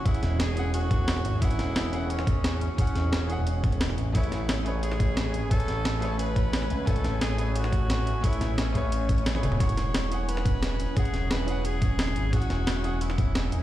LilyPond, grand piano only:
\new Staff \with { instrumentName = "Grand piano" } { \time 4/4 \key e \major \tempo 4 = 176 <e cis' gis' fis''>4. <e cis' gis' fis''>2~ <e cis' gis' fis''>8 | <e cis' gis' fis''>4. <e cis' gis' fis''>2~ <e cis' gis' fis''>8 | <e cis' gis' fis''>4. <e cis' gis' fis''>2~ <e cis' gis' fis''>8 | <a gis' b' cis''>4. <a gis' b' cis''>2~ <a gis' b' cis''>8 |
<a b' cis'' gis''>4. <a gis' b' cis''>2~ <a gis' b' cis''>8 | <a b' cis'' gis''>4. <a gis' b' cis''>2~ <a gis' b' cis''>8 | <a gis' b' cis''>4. <a gis' b' cis''>4.~ <a gis' b' cis''>16 <a gis' b' cis''>16 <a gis' b' cis''>8 | <e cis' gis' fis''>4. <e cis' gis' fis''>2~ <e cis' gis' fis''>8 |
<e cis' gis' fis''>4. <e cis' gis' fis''>2~ <e cis' gis' fis''>8 | <e cis' gis' fis''>4. <e cis' gis' fis''>2~ <e cis' gis' fis''>8 | }